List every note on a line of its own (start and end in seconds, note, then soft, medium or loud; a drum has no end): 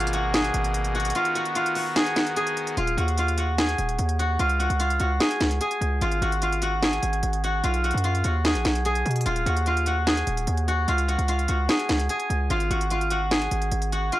0.00 0.51 G#1 loud
0.00 1.14 B2 medium
0.00 1.12 A#3 medium
0.00 0.20 F4 medium
0.00 0.34 G#4 medium
0.00 1.13 G#4 medium
0.00 0.20 F5 medium
0.00 0.35 G#5 medium
0.00 closed hi-hat medium
0.07 closed hi-hat medium
0.13 0.95 F#4 medium
0.13 0.95 F#5 medium
0.13 closed hi-hat medium
0.34 1.96 G#4 medium
0.34 1.85 G#5 medium
0.34 snare loud
0.34 closed hi-hat medium
0.44 closed hi-hat medium
0.54 1.13 G#1 loud
0.54 closed hi-hat medium
0.64 closed hi-hat medium
0.74 closed hi-hat medium
0.85 closed hi-hat medium
0.95 1.21 F#4 medium
0.95 1.21 F#5 medium
0.95 closed hi-hat soft
1.00 closed hi-hat medium
1.05 closed hi-hat medium
1.10 closed hi-hat medium
1.15 2.76 D#3 medium
1.15 2.76 B3 medium
1.15 1.41 F4 loud
1.15 2.76 F#4 medium
1.15 1.41 F5 medium
1.15 closed hi-hat medium
1.25 closed hi-hat medium
1.35 1.61 F#4 medium
1.35 1.61 F#5 medium
1.35 closed hi-hat medium
1.45 closed hi-hat medium
1.55 1.82 F4 loud
1.55 1.82 F5 medium
1.55 closed hi-hat medium
1.66 closed hi-hat medium
1.75 2.83 F#4 medium
1.75 2.83 F#5 medium
1.75 open hi-hat medium
1.96 2.36 G#4 medium
1.96 2.37 G#5 medium
1.96 snare loud
1.96 closed hi-hat medium
2.06 closed hi-hat medium
2.16 snare medium
2.16 closed hi-hat medium
2.27 closed hi-hat medium
2.36 3.58 G#4 medium
2.36 3.59 G#5 medium
2.36 closed hi-hat medium
2.47 closed hi-hat medium
2.57 closed hi-hat medium
2.67 closed hi-hat medium
2.77 2.97 D#1 loud
2.77 3.03 F4 loud
2.77 3.03 F5 medium
2.77 closed hi-hat medium
2.87 closed hi-hat medium
2.97 3.75 D#2 loud
2.97 3.24 F#4 medium
2.97 3.24 F#5 medium
2.97 closed hi-hat medium
3.08 closed hi-hat medium
3.18 3.44 F4 medium
3.18 3.44 F5 medium
3.18 closed hi-hat medium
3.28 closed hi-hat medium
3.38 4.19 F#4 medium
3.38 4.19 F#5 medium
3.38 closed hi-hat medium
3.58 5.20 G#4 medium
3.58 5.09 G#5 medium
3.58 snare loud
3.58 closed hi-hat medium
3.69 closed hi-hat medium
3.78 3.98 D#1 loud
3.78 closed hi-hat medium
3.89 closed hi-hat medium
3.99 4.38 D#2 loud
3.99 closed hi-hat medium
4.09 closed hi-hat medium
4.19 4.45 F#4 medium
4.19 4.45 F#5 medium
4.19 closed hi-hat medium
4.39 4.69 C#2 loud
4.39 4.65 F4 loud
4.39 4.65 F5 medium
4.39 closed hi-hat medium
4.49 closed hi-hat medium
4.59 4.86 F#4 medium
4.59 4.86 F#5 medium
4.59 closed hi-hat medium
4.70 4.99 C#2 loud
4.70 closed hi-hat medium
4.80 5.06 F4 medium
4.80 5.06 F5 medium
4.80 closed hi-hat medium
4.90 closed hi-hat medium
5.00 5.20 C#2 loud
5.00 6.08 F#4 medium
5.00 6.08 F#5 medium
5.00 closed hi-hat medium
5.20 5.61 G#4 medium
5.20 5.61 G#5 medium
5.20 snare loud
5.20 closed hi-hat medium
5.31 closed hi-hat medium
5.41 5.60 C#2 loud
5.41 snare medium
5.41 closed hi-hat medium
5.51 closed hi-hat medium
5.61 6.82 G#4 medium
5.61 6.83 G#5 medium
5.61 closed hi-hat medium
5.71 closed hi-hat medium
5.81 6.01 C#2 loud
5.81 closed hi-hat medium
6.01 6.21 G#1 loud
6.01 6.28 F4 loud
6.01 6.28 F5 medium
6.01 closed hi-hat medium
6.12 closed hi-hat medium
6.22 7.00 G#1 loud
6.22 6.48 F#4 medium
6.22 6.48 F#5 medium
6.22 closed hi-hat medium
6.32 closed hi-hat medium
6.42 6.68 F4 medium
6.42 6.68 F5 medium
6.42 closed hi-hat medium
6.53 closed hi-hat medium
6.62 7.43 F#4 medium
6.62 7.44 F#5 medium
6.62 closed hi-hat medium
6.83 8.45 G#4 medium
6.83 8.34 G#5 medium
6.83 snare loud
6.83 closed hi-hat medium
6.93 closed hi-hat medium
7.03 7.22 G#1 loud
7.03 closed hi-hat medium
7.13 closed hi-hat medium
7.23 7.62 G#1 loud
7.23 closed hi-hat medium
7.33 closed hi-hat medium
7.44 7.70 F#4 medium
7.44 7.70 F#5 medium
7.44 closed hi-hat medium
7.64 7.93 B1 loud
7.64 7.90 F4 medium
7.64 7.90 F5 medium
7.64 closed hi-hat medium
7.74 closed hi-hat medium
7.84 8.10 F#4 medium
7.84 8.10 F#5 medium
7.84 closed hi-hat soft
7.91 8.23 F#2 loud
7.91 closed hi-hat medium
7.98 closed hi-hat medium
8.04 8.30 F4 medium
8.04 8.30 F5 medium
8.04 closed hi-hat medium
8.15 closed hi-hat medium
8.24 8.56 D#2 loud
8.24 9.32 F#4 medium
8.24 9.32 F#5 medium
8.24 closed hi-hat medium
8.45 8.85 G#4 medium
8.45 8.86 G#5 medium
8.45 snare loud
8.45 closed hi-hat medium
8.55 8.65 A#1 loud
8.55 closed hi-hat medium
8.65 9.04 B1 loud
8.65 snare medium
8.65 closed hi-hat medium
8.75 closed hi-hat medium
8.85 10.07 G#4 medium
8.85 10.07 G#5 medium
8.85 closed hi-hat medium
8.95 closed hi-hat medium
9.06 9.25 B2 loud
9.06 closed hi-hat soft
9.11 closed hi-hat medium
9.16 closed hi-hat medium
9.21 closed hi-hat medium
9.26 9.45 D#1 loud
9.26 9.52 F4 loud
9.26 9.52 F5 medium
9.26 closed hi-hat medium
9.36 closed hi-hat medium
9.46 10.24 D#2 loud
9.46 9.73 F#4 medium
9.46 9.73 F#5 medium
9.46 closed hi-hat medium
9.57 closed hi-hat medium
9.66 9.93 F4 medium
9.66 9.93 F5 medium
9.66 closed hi-hat medium
9.77 closed hi-hat medium
9.86 10.67 F#4 medium
9.86 10.68 F#5 medium
9.86 closed hi-hat medium
10.07 11.69 G#4 medium
10.07 11.58 G#5 medium
10.07 snare loud
10.07 closed hi-hat medium
10.17 closed hi-hat medium
10.27 10.47 D#1 loud
10.27 closed hi-hat medium
10.37 closed hi-hat medium
10.47 10.86 D#2 loud
10.47 closed hi-hat medium
10.57 closed hi-hat medium
10.68 10.94 F#4 medium
10.68 10.94 F#5 medium
10.68 closed hi-hat medium
10.88 11.17 C#2 loud
10.88 11.14 F4 loud
10.88 11.14 F5 medium
10.88 closed hi-hat medium
10.98 closed hi-hat medium
11.08 11.34 F#4 medium
11.08 11.34 F#5 medium
11.08 closed hi-hat medium
11.18 11.48 C#2 loud
11.18 closed hi-hat medium
11.28 11.55 F4 medium
11.28 11.55 F5 medium
11.28 closed hi-hat medium
11.39 closed hi-hat medium
11.48 11.68 C#2 loud
11.48 12.56 F#4 medium
11.48 12.56 F#5 medium
11.48 closed hi-hat medium
11.69 12.09 G#4 medium
11.69 12.10 G#5 medium
11.69 snare loud
11.69 closed hi-hat medium
11.79 closed hi-hat medium
11.89 12.09 C#2 loud
11.89 snare loud
11.89 closed hi-hat medium
12.00 closed hi-hat medium
12.09 13.31 G#4 medium
12.09 13.32 G#5 medium
12.09 closed hi-hat medium
12.20 closed hi-hat medium
12.30 12.49 C#2 loud
12.30 closed hi-hat medium
12.50 12.70 G#1 loud
12.50 12.77 F4 loud
12.50 12.77 F5 medium
12.50 closed hi-hat medium
12.60 closed hi-hat medium
12.71 13.48 G#1 loud
12.71 12.97 F#4 medium
12.71 12.97 F#5 medium
12.71 closed hi-hat medium
12.81 closed hi-hat medium
12.90 13.17 F4 medium
12.90 13.17 F5 medium
12.90 closed hi-hat medium
13.01 closed hi-hat medium
13.10 13.92 F#4 medium
13.10 13.93 F#5 medium
13.10 closed hi-hat medium
13.31 14.20 G#4 medium
13.31 14.20 G#5 medium
13.31 snare loud
13.31 closed hi-hat medium
13.42 closed hi-hat medium
13.51 13.71 G#1 loud
13.51 closed hi-hat medium
13.62 closed hi-hat medium
13.72 14.11 G#1 loud
13.72 closed hi-hat medium
13.82 closed hi-hat medium
13.92 14.18 F#4 medium
13.92 14.18 F#5 medium
13.92 closed hi-hat medium
14.12 14.20 F4 medium
14.12 14.20 F5 medium
14.12 closed hi-hat medium